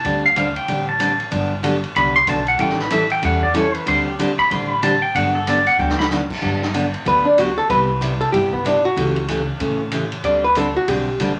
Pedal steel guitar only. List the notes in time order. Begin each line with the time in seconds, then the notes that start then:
Already playing: A5
0.26 F5
0.37 F5
0.56 G5
0.89 A5
1.97 B5
2.16 C6
2.29 A5
2.48 F#5
2.60 G5
2.81 B4
2.92 E5
3.12 G5
3.25 F#5
3.43 D5
3.56 C#5
3.76 B4
3.88 C5
4.06 G4
4.39 B5
4.52 C6
4.71 B5
4.83 A5
5.02 G5
5.15 F#5
5.35 A4
5.48 D5
5.67 F#5
5.79 G5
5.99 B5